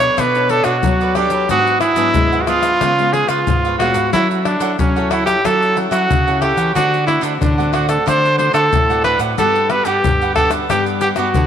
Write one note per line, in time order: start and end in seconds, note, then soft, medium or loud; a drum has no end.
0.00 0.15 F#3 medium
0.00 0.15 D4 medium
0.00 0.16 D4 medium
0.00 0.16 A4 medium
0.00 0.16 B4 medium
0.00 0.16 C#5 medium
0.00 0.21 C#5 loud
0.17 0.60 B2 medium
0.17 0.81 B3 medium
0.17 0.48 D4 medium
0.17 0.49 A4 medium
0.17 0.49 B4 medium
0.17 0.52 B4 medium
0.17 0.50 D5 medium
0.17 pandeiro medium
0.17 tamborim medium
0.17 shaker medium
0.17 surdo medium
0.35 0.79 D4 medium
0.35 0.79 A4 medium
0.35 0.79 C#5 medium
0.35 pandeiro soft
0.35 shaker soft
0.49 0.64 D4 soft
0.49 0.64 A4 soft
0.49 0.66 A4 loud
0.49 0.65 B4 soft
0.49 0.65 D5 medium
0.49 pandeiro medium
0.64 0.80 B2 medium
0.64 0.75 D4 medium
0.64 1.16 F#4 medium
0.64 0.76 A4 medium
0.64 0.76 B4 medium
0.64 0.76 D5 medium
0.64 pandeiro medium
0.64 tamborim medium
0.64 shaker medium
0.83 1.26 F#3 medium
0.83 1.47 F#3 medium
0.83 1.12 D4 medium
0.83 1.12 A4 medium
0.83 1.12 C#5 medium
0.83 pandeiro medium
0.83 shaker medium
0.83 surdo loud
1.01 1.15 A4 soft
1.01 1.16 B4 soft
1.01 1.16 D5 soft
1.01 pandeiro soft
1.01 shaker soft
1.15 1.44 D4 medium
1.15 1.32 D4 medium
1.15 1.49 G4 medium
1.15 1.44 A4 medium
1.15 1.32 A4 medium
1.15 1.31 B4 medium
1.15 1.44 C#5 medium
1.15 1.30 D5 medium
1.15 pandeiro medium
1.15 tamborim medium
1.30 1.46 F#3 medium
1.30 1.49 A4 soft
1.30 1.48 B4 soft
1.30 1.47 D5 soft
1.30 pandeiro medium
1.30 shaker medium
1.49 2.12 G#2 medium
1.49 1.92 G#2 medium
1.49 1.80 F#3 medium
1.49 1.81 B3 medium
1.49 1.80 D4 medium
1.49 1.81 D4 medium
1.49 1.80 F#4 medium
1.49 1.81 G#4 medium
1.49 1.82 B4 medium
1.49 1.82 F#5 medium
1.49 pandeiro medium
1.49 shaker medium
1.49 surdo medium
1.67 pandeiro soft
1.67 shaker soft
1.80 1.95 D4 soft
1.80 2.43 E4 medium
1.80 1.96 G#4 soft
1.80 1.96 B4 medium
1.80 1.97 F#5 medium
1.80 pandeiro medium
1.80 tamborim medium
1.80 shaker medium
1.96 2.11 G#2 medium
1.96 2.42 F#3 medium
1.96 2.42 B3 medium
1.96 2.07 D4 medium
1.96 2.42 D4 medium
1.96 2.07 G#4 medium
1.96 2.07 B4 medium
1.96 2.07 F#5 medium
1.96 pandeiro medium
1.96 shaker medium
2.14 2.78 G#2 soft
2.14 2.71 G#3 medium
2.14 pandeiro medium
2.14 shaker medium
2.14 surdo loud
2.32 2.47 G#4 soft
2.32 2.48 B4 soft
2.32 2.47 F#5 medium
2.32 pandeiro soft
2.32 shaker soft
2.41 2.49 F#4 medium
2.47 2.78 F#3 medium
2.47 2.78 B3 medium
2.47 2.79 D4 medium
2.47 2.78 D4 medium
2.47 3.14 F4 loud
2.47 2.80 G#4 medium
2.47 2.80 B4 medium
2.47 pandeiro medium
2.47 tamborim medium
2.47 shaker medium
2.63 pandeiro medium
2.63 tamborim medium
2.63 shaker medium
2.81 3.23 C#3 medium
2.81 3.44 C#3 medium
2.81 2.91 G#3 medium
2.81 2.91 B3 medium
2.81 3.12 F4 medium
2.81 2.92 F4 medium
2.81 3.13 B4 medium
2.81 3.13 C#5 medium
2.81 3.14 F5 medium
2.81 pandeiro medium
2.81 tamborim medium
2.81 shaker medium
2.81 surdo medium
2.99 3.42 G#3 medium
2.99 3.43 B3 medium
2.99 3.43 F4 medium
2.99 pandeiro soft
2.99 shaker soft
3.13 3.28 F4 soft
3.13 3.30 G#4 medium
3.13 3.28 B4 soft
3.13 3.29 C#5 medium
3.13 3.29 F5 medium
3.13 pandeiro medium
3.28 3.44 C#3 medium
3.28 3.78 F4 medium
3.28 3.39 F4 medium
3.28 3.39 B4 medium
3.28 3.39 C#5 medium
3.28 3.39 F5 medium
3.28 pandeiro medium
3.28 tamborim medium
3.28 shaker medium
3.47 4.10 G#2 medium
3.47 3.76 G#2 medium
3.47 3.75 G#3 medium
3.47 3.75 B3 medium
3.47 3.76 F4 medium
3.47 pandeiro medium
3.47 shaker medium
3.47 surdo loud
3.65 3.80 B4 soft
3.65 3.80 C#5 soft
3.65 3.79 F5 soft
3.65 pandeiro soft
3.65 shaker soft
3.78 3.95 A#2 medium
3.78 4.07 G#3 medium
3.78 4.07 B3 medium
3.78 3.95 F4 medium
3.78 4.08 F4 medium
3.78 4.10 F#4 medium
3.78 3.96 B4 medium
3.78 3.94 C#5 medium
3.78 3.94 F5 medium
3.78 pandeiro medium
3.78 tamborim medium
3.94 4.10 G#2 medium
3.94 4.12 B4 soft
3.94 4.11 C#5 soft
3.94 4.11 F5 soft
3.94 pandeiro medium
3.94 shaker medium
4.13 4.76 F#3 medium
4.13 4.55 F#3 medium
4.13 4.41 C#4 medium
4.13 4.28 E4 medium
4.13 4.44 E4 medium
4.13 4.41 E4 medium
4.13 4.45 A4 medium
4.13 4.41 A4 medium
4.13 4.45 C#5 medium
4.13 4.46 F#5 medium
4.13 pandeiro medium
4.13 shaker medium
4.13 surdo medium
4.31 pandeiro soft
4.31 shaker soft
4.45 4.76 D4 medium
4.45 4.59 E4 medium
4.45 4.76 E4 soft
4.45 4.60 A4 soft
4.45 4.77 A4 medium
4.45 4.60 C#5 medium
4.45 4.61 F#5 medium
4.45 pandeiro medium
4.45 tamborim medium
4.60 4.75 F#3 medium
4.60 4.70 E4 medium
4.60 4.70 A4 medium
4.60 4.71 C#5 medium
4.60 4.71 F#5 medium
4.60 pandeiro medium
4.60 shaker medium
4.79 5.41 C#3 soft
4.79 5.35 F#3 medium
4.79 5.12 C#4 medium
4.79 pandeiro medium
4.79 shaker medium
4.79 surdo loud
4.96 5.23 C#4 medium
4.96 5.24 E4 medium
4.96 5.24 A4 medium
4.96 5.10 A4 soft
4.96 5.11 C#5 soft
4.96 5.11 F#5 soft
4.96 pandeiro soft
4.96 shaker soft
5.11 5.42 E4 medium
5.11 5.25 E4 medium
5.11 5.43 A4 medium
5.11 5.43 C#5 medium
5.11 5.43 F#5 medium
5.11 pandeiro medium
5.11 tamborim medium
5.26 5.38 C#4 medium
5.26 5.38 E4 medium
5.26 5.47 G4 medium
5.26 5.38 A4 medium
5.26 pandeiro medium
5.26 tamborim medium
5.26 shaker medium
5.45 5.86 F#3 medium
5.45 6.07 F#3 medium
5.45 5.72 C#4 medium
5.45 5.75 E4 medium
5.45 5.72 E4 medium
5.45 5.78 A4 medium
5.45 5.76 A4 medium
5.45 5.72 A4 medium
5.45 5.76 C#5 medium
5.45 5.77 F#5 medium
5.45 pandeiro medium
5.45 tamborim medium
5.45 shaker medium
5.45 surdo medium
5.62 pandeiro soft
5.62 shaker soft
5.76 6.07 C#4 medium
5.76 5.90 E4 soft
5.76 6.07 E4 medium
5.76 6.07 A4 soft
5.76 5.90 A4 soft
5.76 5.91 C#5 medium
5.76 5.91 F#5 medium
5.76 pandeiro medium
5.91 6.06 F#3 medium
5.91 6.01 E4 medium
5.91 6.42 F#4 medium
5.91 6.01 A4 medium
5.91 6.02 C#5 medium
5.91 6.02 F#5 medium
5.91 pandeiro medium
5.91 tamborim medium
5.91 shaker medium
6.10 6.52 C#3 medium
6.10 6.72 C#3 medium
6.10 pandeiro medium
6.10 shaker medium
6.10 surdo loud
6.27 6.71 C#4 medium
6.27 6.71 E4 medium
6.27 6.71 A4 medium
6.27 6.41 A4 soft
6.27 6.41 C#5 soft
6.27 6.42 F#5 soft
6.27 pandeiro soft
6.27 shaker soft
6.41 6.57 E4 medium
6.41 6.75 G4 medium
6.41 6.57 A4 medium
6.41 6.57 C#5 medium
6.41 6.56 F#5 medium
6.41 pandeiro medium
6.41 tamborim medium
6.57 6.72 E3 medium
6.57 6.74 A4 soft
6.57 6.74 C#5 soft
6.57 6.73 F#5 soft
6.57 pandeiro medium
6.57 shaker medium
6.75 7.17 D3 medium
6.75 7.38 D3 medium
6.75 6.95 A3 medium
6.75 6.95 C4 medium
6.75 7.06 D4 medium
6.75 7.06 F#4 medium
6.75 6.95 F#4 medium
6.75 7.07 C5 medium
6.75 7.07 D5 medium
6.75 7.08 F#5 medium
6.75 pandeiro medium
6.75 shaker medium
6.75 surdo medium
6.94 pandeiro soft
6.94 shaker soft
7.07 7.39 A3 medium
7.07 7.39 C4 soft
7.07 7.20 D4 soft
7.07 7.22 E4 medium
7.07 7.20 C5 medium
7.07 7.21 D5 medium
7.07 7.21 F#5 medium
7.07 pandeiro medium
7.07 tamborim medium
7.21 7.37 D3 medium
7.21 7.32 D4 medium
7.21 7.32 C5 medium
7.21 7.33 D5 medium
7.21 7.32 F#5 medium
7.21 pandeiro medium
7.21 shaker medium
7.41 8.04 A2 medium
7.41 7.97 D3 medium
7.41 7.75 D4 medium
7.41 pandeiro medium
7.41 shaker medium
7.41 surdo loud
7.58 8.02 A3 medium
7.58 8.03 C4 medium
7.58 8.03 F#4 medium
7.58 7.72 C5 soft
7.58 7.73 D5 soft
7.58 7.73 F#5 soft
7.58 pandeiro soft
7.58 shaker soft
7.73 8.05 D4 medium
7.73 7.88 F#4 medium
7.73 8.05 C5 medium
7.73 8.05 D5 medium
7.73 8.06 F#5 medium
7.73 pandeiro medium
7.73 tamborim medium
7.89 8.09 A4 medium
7.89 pandeiro medium
7.89 tamborim medium
7.89 shaker medium
8.06 8.69 D3 medium
8.06 8.49 D3 medium
8.06 8.26 A3 medium
8.06 8.26 C4 medium
8.06 8.37 D4 medium
8.06 8.27 F#4 medium
8.06 8.38 C5 medium
8.06 8.38 D5 medium
8.06 8.39 F#5 medium
8.06 pandeiro medium
8.06 tamborim medium
8.06 shaker medium
8.06 surdo medium
8.25 pandeiro soft
8.25 shaker soft
8.38 8.70 A3 medium
8.38 8.70 C4 medium
8.38 8.52 D4 soft
8.38 8.70 F#4 medium
8.38 8.53 C5 medium
8.38 8.52 C5 soft
8.38 8.53 D5 medium
8.38 8.53 F#5 medium
8.38 pandeiro medium
8.53 8.69 D3 medium
8.53 8.64 D4 medium
8.53 9.01 A4 medium
8.53 8.64 C5 medium
8.53 8.64 D5 medium
8.53 8.64 F#5 medium
8.53 pandeiro medium
8.53 tamborim medium
8.53 shaker medium
8.73 9.35 A2 medium
8.73 9.15 A2 medium
8.73 pandeiro medium
8.73 shaker medium
8.73 surdo loud
8.89 9.33 A3 medium
8.89 9.33 C4 medium
8.89 9.33 F#4 medium
8.89 9.04 C5 soft
8.89 9.04 D5 soft
8.89 9.04 F#5 soft
8.89 pandeiro soft
8.89 shaker soft
9.04 9.20 D4 medium
9.04 9.20 B4 medium
9.04 9.20 C5 medium
9.04 9.19 D5 medium
9.04 9.19 F#5 medium
9.04 pandeiro medium
9.04 tamborim medium
9.19 9.34 A2 medium
9.19 9.37 C5 soft
9.19 9.36 D5 soft
9.19 9.36 F#5 medium
9.19 pandeiro medium
9.19 shaker medium
9.38 9.80 G2 medium
9.38 10.01 G3 medium
9.38 9.58 B3 medium
9.38 9.68 D4 medium
9.38 9.58 D4 medium
9.38 9.58 F#4 medium
9.38 9.69 G4 medium
9.38 9.72 A4 medium
9.38 9.70 B4 medium
9.38 9.71 F#5 medium
9.38 pandeiro medium
9.38 shaker medium
9.38 surdo medium
9.55 pandeiro soft
9.55 shaker soft
9.69 10.13 B3 medium
9.69 9.84 D4 soft
9.69 10.13 D4 soft
9.69 10.13 F#4 medium
9.69 9.85 G4 soft
9.69 9.87 B4 medium
9.69 9.85 B4 soft
9.69 9.85 F#5 medium
9.69 pandeiro medium
9.69 tamborim medium
9.85 10.01 G2 medium
9.85 9.96 D4 medium
9.85 10.34 G4 medium
9.85 9.96 G4 medium
9.85 9.96 B4 medium
9.85 9.96 F#5 medium
9.85 pandeiro medium
9.85 shaker medium
10.04 10.60 G2 medium
10.04 10.66 D3 medium
10.04 pandeiro medium
10.04 shaker medium
10.04 surdo loud
10.21 10.36 G4 soft
10.21 10.37 B4 soft
10.21 10.36 F#5 medium
10.21 pandeiro soft
10.21 shaker soft
10.35 10.64 B3 medium
10.35 10.64 D4 medium
10.35 10.68 D4 medium
10.35 10.64 F#4 medium
10.35 10.69 G4 medium
10.35 10.50 A4 medium
10.35 10.69 B4 medium
10.35 10.69 F#5 medium
10.35 pandeiro medium
10.35 tamborim medium
10.35 surdo medium
10.51 pandeiro medium
10.51 tamborim medium
10.51 shaker medium
10.70 11.12 G2 medium
10.70 11.32 G3 medium
10.70 11.01 B3 medium
10.70 11.01 D4 medium
10.70 10.85 G4 medium
10.70 11.01 G4 medium
10.70 11.02 B4 medium
10.70 11.03 F#5 medium
10.70 pandeiro medium
10.70 tamborim medium
10.70 shaker medium
10.70 surdo medium
10.86 pandeiro soft
10.86 shaker soft
11.01 11.17 D4 soft
11.01 11.09 G4 medium
11.01 11.18 G4 soft
11.01 11.17 B4 medium
11.01 11.18 F#5 medium
11.01 pandeiro medium
11.01 shaker medium
11.16 11.32 G2 medium
11.16 11.47 B3 medium
11.16 11.47 D4 medium
11.16 11.27 D4 medium
11.16 11.47 F#4 medium
11.16 11.28 G4 medium
11.16 11.28 B4 medium
11.16 11.28 F#5 medium
11.16 pandeiro medium
11.16 tamborim medium
11.16 shaker medium
11.34 11.47 D3 medium
11.34 pandeiro medium
11.34 shaker medium
11.34 surdo loud